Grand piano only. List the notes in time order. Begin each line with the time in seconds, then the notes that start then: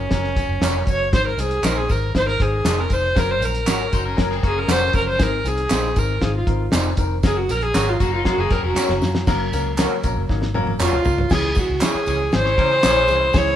0.12 F#3 C#4 A#4
0.37 F#3 C#4 C#5
0.63 F#3 C#4 A#4
0.88 F#3 C#4 F#4
1.13 G#3 D#4 C5
1.38 G#3 D#4 C5
1.64 G#3 D#4 C5
1.89 G#3 D#4 C5
2.15 G#3 D#4 C5
2.40 G#3 D#4 C5
2.65 G#3 D#4 A#4
2.90 G#3 D#4 C5
3.16 F#3 C#4 A#4
3.41 F#3 C#4 A#4
3.67 F#3 C#4 A#4
3.91 F#3 C#4 F#4
4.17 F#3 C#4 A#4
4.43 F#3 C#4 A#4
4.68 F#3 C#4 A#4
4.94 F#3 C#4 A#4
5.19 D#3 C4 G#4
5.45 D#3 C4 G#4
5.70 D#3 C4 F4
5.97 D#3 C4 G#4
6.21 D#3 C4 F4
6.47 D#3 C4 A#4
6.72 D#3 C4 G#4
6.98 D#3 C4 A#4
7.24 F#3 C#4 A#4
7.49 F#3 C#4 A#4
7.75 F#3 C#4 A#4
8.00 F#3 C#4 A#4
8.25 F#3 C#4 A#4
8.51 F#3 C#4 A#4
8.76 F#3 C#4 C#5
9.02 F#3 C#4 F4
9.28 F#3 A#3 C#4 A#4
9.53 F#3 A#3 C#4 A#4
9.78 F#3 A#3 C#4 A#4
10.04 F#3 A#3 C#4 A#4
10.29 F#3 A#3 C#4 D#4
10.55 F#3 A#3 C#4 A#4
10.80 G#4
11.05 A#4
11.19 C#5
11.30 E3 G#3 C#4 G#4
11.56 E3 G#3 C#4 G#4
11.82 E3 G#3 C#4 G#4
12.07 E3 G#3 C#4 G#4
12.33 E3 G#3 C#4 G#4
12.58 E3 G#3 C#4 G#4
12.83 E3 G#3 C#4 G#4
13.08 E3 G#3 C#4 G#4
13.34 E3 G#3 C#4 G#4